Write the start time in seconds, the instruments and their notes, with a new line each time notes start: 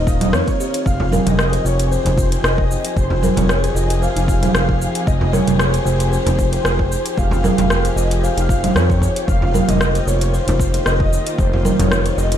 Already playing: analog synth bass D#1, string section D#3 A#3 D#4 F4, soft synth lead D#5
0.07 kalimba F5, kick, cabasa
0.21 kalimba D#4, closed hi-hat, low conga, cabasa
0.33 analog synth bass F2, kalimba C4, soft synth lead C#5, cross-stick, cabasa
0.48 kick, closed hi-hat, cabasa
0.60 kalimba G4, cabasa
0.74 closed hi-hat, cabasa
0.86 analog synth bass F1, string section C3 F3 G4 G#4, soft synth lead F5, kick, cabasa
1.00 kalimba F4, frame drum
1.12 kalimba A#4, low conga, cabasa
1.26 analog synth bass F1, soft synth lead D#5, closed hi-hat, low conga, cabasa
1.39 cross-stick, cabasa
1.53 kalimba C5, closed hi-hat, cabasa
1.65 analog synth bass F1, kalimba F4, soft synth lead C#5, cabasa
1.79 closed hi-hat, cabasa
1.91 soft synth lead C5, kalimba C5, cabasa
2.05 analog synth bass F1, kalimba D#4, closed hi-hat, frame drum, cabasa
2.17 kalimba F4, kick, cabasa
2.32 kalimba C5, closed hi-hat, cabasa
2.44 analog synth bass F1, soft synth lead D#5, cross-stick, cabasa
2.58 kick
2.71 cabasa
2.85 closed hi-hat, cabasa
2.96 analog synth bass F1, soft synth lead C5, kick, cabasa
3.10 kalimba F4, frame drum
3.23 kalimba A#4, low conga, cabasa
3.37 analog synth bass F1, soft synth lead C#5, closed hi-hat, frame drum, low conga, cabasa
3.49 cross-stick, cabasa
3.64 kalimba C5, closed hi-hat, cabasa
3.75 analog synth bass F1, kalimba F4, soft synth lead D#5, cabasa
3.90 closed hi-hat, cabasa
4.01 kalimba C5, soft synth lead F5, cabasa
4.16 analog synth bass F1, kalimba D#4, closed hi-hat, cabasa
4.28 kalimba F4, kick, cabasa
4.43 kalimba C5, closed hi-hat, low conga, cabasa
4.54 analog synth bass F1, soft synth lead F5, cross-stick, cabasa
4.69 kick
4.82 cabasa
4.95 closed hi-hat, cabasa
5.07 analog synth bass F1, soft synth lead D#5, kick, cabasa
5.21 kalimba F4, frame drum
5.33 kalimba A#4, soft synth lead C#5, low conga, cabasa
5.47 analog synth bass F1, closed hi-hat, low conga, cabasa
5.59 cross-stick, cabasa
5.74 kalimba C5, closed hi-hat, cabasa
5.86 analog synth bass F1, kalimba F4, soft synth lead C5, cabasa
6.00 closed hi-hat, cabasa
6.12 kalimba C5, cabasa
6.26 analog synth bass F1, kalimba D#4, closed hi-hat, frame drum, cabasa
6.39 kalimba F4, kick, cabasa
6.53 kalimba C5, closed hi-hat, cabasa
6.64 analog synth bass F1, soft synth lead C5, cross-stick, cabasa
6.79 kick
6.92 cabasa
7.06 closed hi-hat, cabasa
7.18 analog synth bass F1, soft synth lead F5, kick, cabasa
7.31 kalimba F4, frame drum, cabasa
7.44 kalimba A#4, low conga, cabasa
7.58 analog synth bass F1, closed hi-hat, low conga, frame drum, cabasa
7.70 cross-stick, cabasa
7.85 kalimba C5, closed hi-hat, cabasa
7.96 analog synth bass F1, kalimba F4, soft synth lead D#5, cabasa
8.11 closed hi-hat, cabasa
8.23 kalimba C5, soft synth lead F5, cabasa
8.37 analog synth bass F1, kalimba D#4, closed hi-hat, cabasa
8.49 kalimba F4, kick, cabasa
8.64 kalimba C5, closed hi-hat, low conga, cabasa
8.75 analog synth bass F2, soft synth lead C#5, cross-stick, cabasa
8.90 kick, cabasa
9.02 kick, cabasa
9.16 closed hi-hat, cabasa
9.28 analog synth bass F1, string section D#3 A#3 F4, soft synth lead F5, kick, cabasa
9.42 kalimba F4, frame drum
9.54 kalimba A#4, low conga, cabasa
9.69 analog synth bass F1, soft synth lead D#5, closed hi-hat, low conga, cabasa
9.81 cross-stick, cabasa
9.95 kalimba C5, closed hi-hat, cabasa
10.07 analog synth bass F1, kalimba F4, soft synth lead C#5, cabasa
10.21 closed hi-hat, cabasa
10.34 kalimba C5, soft synth lead C5, cabasa
10.47 analog synth bass F1, kalimba D#4, closed hi-hat, frame drum, cabasa
10.60 kalimba F4, kick, cabasa
10.74 kalimba C5, closed hi-hat, cabasa
10.86 analog synth bass F1, soft synth lead D#5, cross-stick, cabasa
11.00 kick
11.13 cabasa
11.27 closed hi-hat, cabasa
11.38 analog synth bass F1, soft synth lead C5, kick, cabasa
11.53 kalimba F4, frame drum
11.65 kalimba A#4, low conga, cabasa
11.79 analog synth bass F1, soft synth lead C#5, closed hi-hat, low conga, frame drum, cabasa
11.92 cross-stick, cabasa
12.06 kalimba C5, closed hi-hat, cabasa
12.17 analog synth bass F1, kalimba F4, soft synth lead D#5, cabasa
12.32 closed hi-hat, cabasa